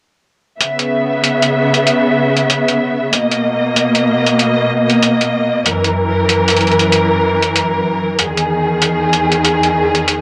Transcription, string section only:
0.60 C#3 B3 E5
3.13 B2 A#3 D#5
5.66 F#2 E3 A#4
8.19 E2 D#3 G#4

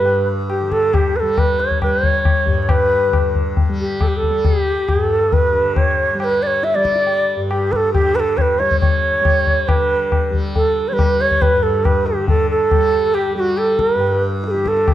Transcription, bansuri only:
Already playing: B4
0.50 G4
0.72 A4
0.94 G4
1.16 A4 B4
1.38 B4
1.60 C#5
1.82 B4
2.05 C#5
2.62 C#5
2.70 B4
3.80 G4
4.02 A4
4.08 G4
4.17 A4
4.46 G4
4.89 A4
5.33 B4
5.76 C#5
6.20 B4 C#5
6.42 D5
6.47 C#5
6.64 E5
6.75 D5
7.51 G4
7.72 B4
7.76 A4
7.93 G4
8.15 B4
8.19 A4
8.37 C#5
8.41 B4
8.59 C#5
8.80 C#5
9.68 B4
10.55 A4
10.88 C#5
10.93 B4
11.21 C#5
11.42 B4
11.63 A4
11.85 B4
12.06 G4
12.29 A4
12.50 A4
13.14 G4
13.36 F#4 G4
13.58 A4
13.79 A#4
13.94 B4
14.47 A4
14.51 G4
14.68 A4
14.89 A4

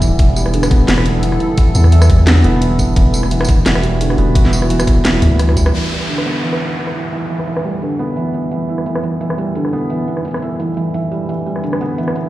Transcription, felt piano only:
Already playing: D3 E3 G3 B3 E4
0.02 E3
0.19 E3
0.36 G3
0.54 D3
0.71 B3
0.88 E3
1.06 B3
1.23 E3
1.41 E4
1.58 E3
1.75 E3
1.93 E3
2.10 G3
2.27 D3
2.44 B3
2.62 E3
2.79 B3
2.97 E3
3.14 E4
3.31 E3
3.49 E3
3.66 E3
3.84 G3
4.01 D3
4.18 B3
4.36 E3
4.53 B3
4.70 E3
4.88 E4
5.05 E3
5.22 E3
5.39 E3
5.57 G3
5.74 E3
5.91 G3
6.08 D3
6.26 B3
6.43 E3
6.61 B3
6.78 E3
6.95 E4
7.13 E3
7.30 E3
7.47 E3
7.65 G3
7.82 D3
7.99 B3
8.17 E3
8.34 B3
8.51 E3
8.69 E4
8.86 E3
9.03 E3
9.21 E3
9.38 G3
9.55 D3
9.73 B3
9.90 E3
10.07 B3
10.25 E3
10.42 E4
10.59 E3
10.77 E3
10.94 E3
11.12 G3
11.29 E3
11.46 G3
11.63 D3
11.81 B3
11.98 E3
12.15 B3

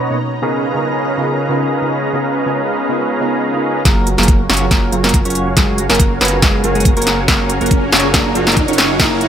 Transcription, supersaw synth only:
Already playing: B3 B4 C#5 D#5 A#5
0.42 C#4 G#4 B4 D#5 F5 A#5
3.85 F#4 C#5 F5 G#5 A#5
4.18 F#4 C#5 F5 G#5 A#5
4.50 F#4 C#5 F5 G#5 A#5
4.92 F#4 C#5 F5 G#5 A#5
5.25 F#4 C#5 F5 G#5 C#6
5.57 F#4 C#5 F5 G#5 A#5
5.90 F#4 C#5 F5 G#5 A#5
6.21 F#4 C#5 F5 G#5 A#5
6.64 F#4 C#5 F5 G#5 A#5
6.97 F#4 C#5 F5 G#5 C#6
7.28 F#4 C#5 F5 G#5 A#5
7.61 F#4 C#5 F5 G#5 A#5
7.92 F#4 C#5 F5 G#5 A#5
8.35 F#4 C#5 F5 G#5 A#5
8.68 F#4 C#5 F5 G#5 C#6
9.00 F#4 C#5 F5 G#5 A#5

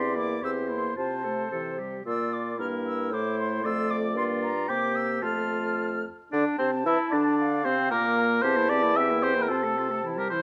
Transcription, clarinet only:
Already playing: G4
0.16 E4
0.42 G4
0.69 E4
0.96 F4
1.23 A4
1.51 A4
1.79 G4
2.06 F4
2.58 E4
3.12 E4
3.65 F4
4.16 F4
4.68 G4
5.23 F4
6.32 D4
6.59 C4
6.85 E4
7.12 D4
7.65 C4
7.91 A#3
8.44 G4
8.57 E4
8.70 G4
8.83 E4
8.98 G4
9.11 E4
9.23 G4
9.35 E4
9.50 F4
9.64 A4
9.78 F4
9.91 A4
10.05 E4
10.19 G4
10.33 E4

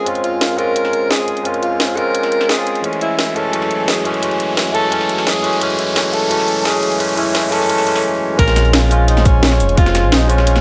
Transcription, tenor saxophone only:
0.24 F4
0.58 A#4
1.10 G#4
1.63 F4
1.97 A#4
2.49 G#4
3.01 E4
3.36 A4
3.88 G#4
4.75 A4
5.27 G#4
5.79 E4
6.13 A4
6.65 G#4
7.17 E4
7.52 A4
8.39 A#4
8.74 F4
9.08 D#4
9.26 C#4
9.78 F4
10.12 D#4
10.30 C#4

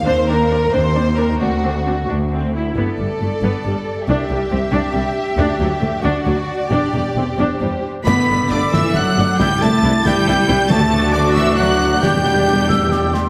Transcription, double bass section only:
0.05 D#2
0.71 D#2
1.40 D2
2.08 D2
2.76 G1
2.99 G1
3.20 G1
3.42 G1
3.65 G1
4.08 C2
4.29 C2
4.51 C2
4.73 C2
4.95 C2
5.37 D2
5.59 D2
5.81 D2
6.03 D2
6.26 D2
6.70 E1
6.93 E1
7.15 E1
7.38 E1
7.61 E1
8.06 G1
8.29 G1
8.50 G1
8.73 G1
8.95 G1
9.17 G1
9.39 C2
9.61 C2
9.83 C2
10.04 C2
10.26 C2
10.48 C2
10.70 D2
12.02 E2

